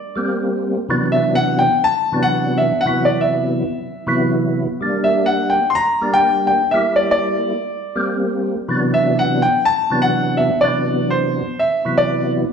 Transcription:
Already playing: grand piano D5
0.16 tonewheel organ G3 A#3 C4
0.89 tonewheel organ C3 E3 F#3 B3 D4
1.12 grand piano E5
1.35 grand piano F#5
1.59 grand piano G5
1.84 grand piano A5
2.12 tonewheel organ C3 E3 F#3 B3 D4
2.23 grand piano F#5
2.58 grand piano E5
2.81 grand piano F#5
2.85 tonewheel organ C3 E3 F#3 B3 E4
3.05 grand piano D5
3.21 grand piano E5
4.07 tonewheel organ C3 E3 F#3 B3 E4
4.81 tonewheel organ G3 A#3 D4
5.04 grand piano E5
5.26 grand piano F#5
5.50 grand piano G5
5.70 grand piano C6
5.75 grand piano A#5
6.01 tonewheel organ G3 A#3 D4
6.14 grand piano G5
6.47 grand piano G5
6.71 tonewheel organ G3 A#3 E4, grand piano E5
6.96 grand piano D5
7.11 grand piano D5
7.96 tonewheel organ G3 A#3 C4
8.68 tonewheel organ C3 E3 F#3 B3 D4
8.94 grand piano E5
9.19 grand piano F#5
9.42 grand piano G5
9.65 grand piano A5
9.90 tonewheel organ C3 E3 F#3 B3 D4
10.02 grand piano F#5
10.37 grand piano E5
10.61 tonewheel organ C3 E3 F#3 B3 D4, grand piano D5
11.10 grand piano C5
11.59 grand piano E5
11.85 tonewheel organ C3 E3 F#3 B3 E4
11.98 grand piano D5

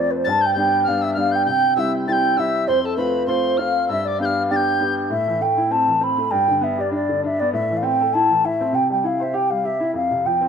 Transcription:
Already playing: upright piano F2 F3 A3 C4
0.00 flute D5
0.10 flute B4
0.16 flute C5
0.24 upright piano G2, tin whistle A6
0.28 flute A5
0.41 tin whistle G6
0.46 flute G5
0.54 upright piano G3 B3 D4, tin whistle G6
0.58 flute G5
0.84 upright piano G3 B3, flute F5, tin whistle F6
0.88 upright piano D4
1.02 flute E5, tin whistle E6
1.14 upright piano G3 B3 D4, tin whistle F6
1.19 flute F5
1.32 flute G5, tin whistle G6
1.46 upright piano C3, tin whistle G6
1.50 flute G5
1.76 upright piano G3 C4 E4, flute E5, tin whistle E6
2.07 upright piano G3 C4 E4, flute G5, tin whistle A6
2.12 tin whistle G6
2.37 upright piano G3 C4 E4, flute E5, tin whistle E6
2.67 upright piano F2, flute C5, tin whistle C6
2.83 flute A4, tin whistle A5
2.97 upright piano A3 C4 F4, flute B4, tin whistle B5
3.27 upright piano A3 C4 F4, flute C5, tin whistle C6
3.57 upright piano A3 C4 F4, flute F5, tin whistle F6
3.88 upright piano G2, flute E5, tin whistle E6
4.00 flute E5
4.04 flute D5, tin whistle D6
4.19 upright piano B3 D4 G4, flute F5, tin whistle G6
4.25 tin whistle F6
4.40 flute F5
4.50 upright piano B3 D4 G4, flute G5, tin whistle A6
4.56 tin whistle G6
4.80 upright piano B3 D4 G4
5.10 upright piano A2, flute E5
5.28 upright piano E3
5.41 upright piano A3, flute G5
5.57 upright piano E4
5.71 upright piano C4, flute A5
5.88 upright piano E3
6.01 upright piano C4, flute B5
6.18 upright piano A3
6.31 upright piano G2, flute G5
6.48 upright piano D3
6.61 upright piano B3, flute E5
6.77 upright piano G4, flute D5
6.91 upright piano D4, flute D5
7.09 upright piano D3
7.24 upright piano D4, flute E5
7.39 upright piano B3, flute D5
7.53 upright piano A2, flute E5
7.71 upright piano E3
7.77 flute F5
7.82 upright piano C4, flute G5
8.01 upright piano A4
8.13 upright piano E4, flute A5
8.30 upright piano E3
8.44 upright piano E4, flute E5
8.61 upright piano C4
8.72 upright piano C3, flute G5
8.90 upright piano G3, flute G5
9.04 upright piano E4, flute F5
9.20 upright piano C5, flute E5
9.33 upright piano G4, flute G5
9.50 upright piano G3, flute F5
9.64 upright piano G4, flute E5
9.80 upright piano E4
9.94 upright piano F2, flute F5
10.11 upright piano C3
10.25 upright piano F3, flute G5
10.41 upright piano C4

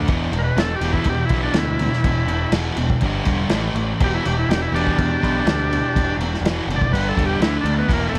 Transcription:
Already playing: distorted electric guitar D4
0.08 picked electric bass E1, distorted electric guitar E2 B2 E3, kick, crash
0.32 picked electric bass E1, distorted electric guitar E2 B2, crash
0.38 transistor combo organ A#4
0.44 transistor combo organ B4
0.57 picked electric bass E1, distorted electric guitar E2 B2, transistor combo organ A4, snare, crash
0.75 transistor combo organ G4
0.81 picked electric bass E1, distorted electric guitar E2 B2 E3, crash
0.93 transistor combo organ E4, kick
1.04 picked electric bass E2, distorted electric guitar E2 B2, kick, crash
1.09 transistor combo organ G4
1.25 transistor combo organ E4, crash
1.30 picked electric bass B1, distorted electric guitar E2 B2 E3, kick
1.43 transistor combo organ D4
1.54 picked electric bass D2, distorted electric guitar E2 B2, snare, crash
1.58 transistor combo organ E4
1.79 distorted electric guitar E2 B2, crash
1.93 snare
2.04 picked electric bass E1, distorted electric guitar E2 B2, kick, crash
2.26 picked electric bass E1, distorted electric guitar E2 B2, crash
2.52 picked electric bass E1, distorted electric guitar E2 B2 E3, snare, crash
2.77 picked electric bass E1, distorted electric guitar E2 B2, crash
2.90 kick
3.01 picked electric bass G1, distorted electric guitar G2 D3 G3, kick, crash
3.25 picked electric bass E1, distorted electric guitar G2 D3 G3, kick, crash
3.49 picked electric bass A1, distorted electric guitar A2 E3 A3, snare, crash
3.74 picked electric bass A1, distorted electric guitar A2 E3, crash
4.00 picked electric bass E1, distorted electric guitar E2 B2 E3, transistor combo organ G4, kick, crash
4.15 transistor combo organ E4
4.25 picked electric bass E1, distorted electric guitar E2 B2, transistor combo organ G4, crash
4.39 transistor combo organ E4
4.49 picked electric bass E1, distorted electric guitar E2 B2, transistor combo organ G4, snare, crash
4.62 transistor combo organ E4
4.72 picked electric bass E1, distorted electric guitar E2 B2 E3, transistor combo organ D4 G4, crash
4.87 kick
4.98 distorted electric guitar E2 B2, picked electric bass E2, kick, crash
5.21 picked electric bass B1, distorted electric guitar E2 B2 E3, kick, crash
5.46 picked electric bass D2, distorted electric guitar E2 B2, snare, crash
5.71 distorted electric guitar E2 B2, crash
5.95 picked electric bass E1, distorted electric guitar E2 B2, kick, crash
6.17 picked electric bass E1, crash
6.22 distorted electric guitar E2 B2
6.34 snare
6.41 picked electric bass E1, distorted electric guitar E2 B2, crash
6.46 distorted electric guitar E3, snare
6.67 picked electric bass F#1, distorted electric guitar E2 B2, crash
6.76 transistor combo organ D5
6.81 kick
6.93 picked electric bass G1, distorted electric guitar G2 D3 G3, transistor combo organ B4, kick, crash
7.09 transistor combo organ A4
7.17 picked electric bass E1, distorted electric guitar G2 D3 G3, kick, crash
7.26 transistor combo organ G4
7.39 picked electric bass D2, distorted electric guitar D3 A3 D4, transistor combo organ E4, snare, crash
7.61 picked electric bass D2, transistor combo organ D4
7.65 distorted electric guitar D3 A3, crash
7.79 transistor combo organ B3
7.88 picked electric bass E1, distorted electric guitar E2 B2 E3, kick, crash
7.93 transistor combo organ A#3
8.09 distorted electric guitar E2 B2, transistor combo organ A3
8.13 picked electric bass E1, crash

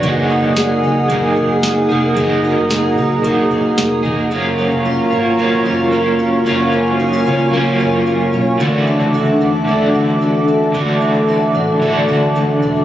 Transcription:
Already playing: twelve-string acoustic guitar F#4, analog synth pad F#5
0.00 fingered electric bass F#1, clean electric guitar F#3 A#3, twelve-string acoustic guitar F#3, analog synth pad A#4 G#5 D#6, kick, closed hi-hat
0.06 clean electric guitar D#4 G#4
0.30 twelve-string acoustic guitar D#4
0.43 fingered electric bass F#1
0.56 twelve-string acoustic guitar G#4, snare, closed hi-hat, tambourine
0.83 fingered electric bass C#2, twelve-string acoustic guitar D#4
1.08 fingered electric bass F#1, clean electric guitar F#3 A#3 D#4, twelve-string acoustic guitar A#3, kick, closed hi-hat
1.13 clean electric guitar G#4
1.36 twelve-string acoustic guitar G#4, kick
1.63 twelve-string acoustic guitar D#4, snare, closed hi-hat, tambourine
1.89 fingered electric bass F1, clean electric guitar D#4 G#4, twelve-string acoustic guitar G#4
1.94 clean electric guitar A#3
2.14 fingered electric bass F#1, clean electric guitar F#3 A#3, twelve-string acoustic guitar F#3, analog synth pad A#5, kick, closed hi-hat
2.20 clean electric guitar D#4 G#4
2.44 twelve-string acoustic guitar D#4
2.57 fingered electric bass F#1
2.70 twelve-string acoustic guitar G#4, snare, closed hi-hat, tambourine
2.97 fingered electric bass C#2, twelve-string acoustic guitar D#4
3.23 fingered electric bass F#1, clean electric guitar F#3 A#3 D#4, twelve-string acoustic guitar A#3, kick, closed hi-hat
3.28 clean electric guitar G#4
3.51 twelve-string acoustic guitar G#4, kick
3.78 fingered electric bass F1, twelve-string acoustic guitar D#4, snare, closed hi-hat, tambourine
4.03 fingered electric bass F1, clean electric guitar D#4 G#4, twelve-string acoustic guitar G#4, kick
4.08 clean electric guitar A#3
4.30 fingered electric bass F#1, clean electric guitar F#3 A#3 C#4 F4, twelve-string acoustic guitar F#3, analog synth pad A#4 F5 A#5 C#6
4.58 twelve-string acoustic guitar C#4
4.72 fingered electric bass F1
4.85 twelve-string acoustic guitar F4
5.10 fingered electric bass G#1, twelve-string acoustic guitar C#4, clean electric guitar C#4 F4
5.16 clean electric guitar A#3
5.37 clean electric guitar F#3 A#3 C#4 F4, twelve-string acoustic guitar A#3
5.65 fingered electric bass F#1, twelve-string acoustic guitar F4
5.90 clean electric guitar F#3 A#3 C#4, twelve-string acoustic guitar A#3
5.96 clean electric guitar F4
6.19 twelve-string acoustic guitar C#4
6.45 fingered electric bass F#1, clean electric guitar F#3 A#3 C#4 F4, twelve-string acoustic guitar F#3, analog synth pad G#5
6.72 twelve-string acoustic guitar C#4
6.99 twelve-string acoustic guitar D#4
7.13 twelve-string acoustic guitar F4
7.25 fingered electric bass C#2, twelve-string acoustic guitar C#4, clean electric guitar C#4 F4
7.30 clean electric guitar A#3
7.51 clean electric guitar F#3 A#3, twelve-string acoustic guitar A#3
7.56 clean electric guitar C#4 F4
7.80 fingered electric bass F#1, twelve-string acoustic guitar F4
8.06 twelve-string acoustic guitar A#3
8.33 fingered electric bass B1, twelve-string acoustic guitar C#4
8.58 fingered electric bass D2, clean electric guitar D3 E3, twelve-string acoustic guitar D3, analog synth pad A4 E5 A5 D6
8.62 clean electric guitar A3 D4 F#4
8.87 twelve-string acoustic guitar D4
9.00 fingered electric bass C#2
9.14 twelve-string acoustic guitar F#4
9.41 fingered electric bass E2, twelve-string acoustic guitar D4
9.65 clean electric guitar D3 E3, twelve-string acoustic guitar A3
9.69 clean electric guitar A3 D4 F#4
9.94 fingered electric bass D2, twelve-string acoustic guitar F#4
10.21 twelve-string acoustic guitar A3
10.48 twelve-string acoustic guitar D4
10.72 fingered electric bass D2, clean electric guitar D3 E3, twelve-string acoustic guitar D3
10.77 clean electric guitar A3 D4 F#4
11.01 twelve-string acoustic guitar D4
11.28 twelve-string acoustic guitar F#4
11.55 fingered electric bass A1, twelve-string acoustic guitar D4
11.79 clean electric guitar D3 E3, twelve-string acoustic guitar A3
11.84 clean electric guitar A3 D4 F#4
12.08 fingered electric bass D2, twelve-string acoustic guitar F#4
12.35 twelve-string acoustic guitar A3
12.62 fingered electric bass E1, twelve-string acoustic guitar D4

